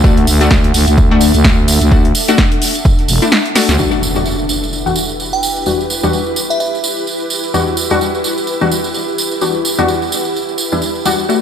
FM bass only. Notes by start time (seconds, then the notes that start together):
0.04 D2
0.27 D2
0.51 D2
0.74 D2
0.88 D2
1.35 D2
1.81 D2
3.09 E1
3.69 D2